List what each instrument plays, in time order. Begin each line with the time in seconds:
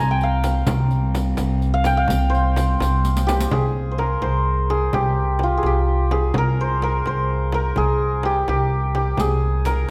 Already playing: upright bass C2, cello C2, santur C5 D#5 A#5 C6
0.00 santur G#5
0.11 santur G5
0.21 santur F5, riq
0.44 riq, frame drum
0.67 upright bass C2, cello C2, riq, frame drum
0.91 riq
1.15 riq, frame drum
1.37 upright bass C2, riq, frame drum
1.62 riq
1.74 santur F5
1.84 santur G5, riq, frame drum
1.97 santur F5
2.08 upright bass C2, riq, frame drum
2.30 santur C5
2.34 riq
2.56 riq, frame drum
2.80 upright bass C2, riq, frame drum
3.05 riq
3.17 riq
3.27 santur G4, riq, frame drum
3.40 riq
3.51 upright bass C2, santur G#4, frame drum
3.92 santur C5
3.98 santur A#4, frame drum
4.21 upright bass C2, santur C5, frame drum
4.70 santur G#4, frame drum
4.93 upright bass C2, santur G4, frame drum
5.39 frame drum
5.43 santur F4
5.58 santur G#4
5.63 upright bass C2, santur G4, frame drum
6.11 santur G#4, frame drum
6.34 upright bass C2, santur A#4, frame drum
6.61 santur C5
6.82 santur A#4, frame drum
7.06 upright bass C2, santur C5, frame drum
7.52 santur A#4, frame drum
7.76 upright bass C2, santur G#4, frame drum
8.23 santur G4, frame drum
8.48 upright bass C2, santur G4, frame drum
8.95 santur G4, frame drum
9.17 upright bass C2, santur G#4, riq, frame drum
9.65 santur A#4, riq, frame drum